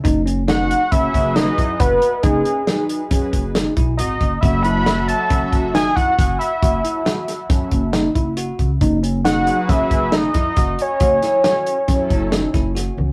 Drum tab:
HH |xxxxxxxxxx|xxxxxxxxxx|xxxxxxxxxx|xxxxxxxxxx|
SD |--o---o---|--o---o---|--o---o---|--ooo-o---|
T1 |----------|----------|----------|----------|
BD |o---oo-oo-|o---oo-o-o|o---oo-oo-|o---oo-o-o|

HH |xxxxxxxxxx|xxxxxxxxx-|
SD |--o-o-ooo-|-oo-o-ooo-|
T1 |----------|---------o|
BD |o---oo-oo-|o---oo-o--|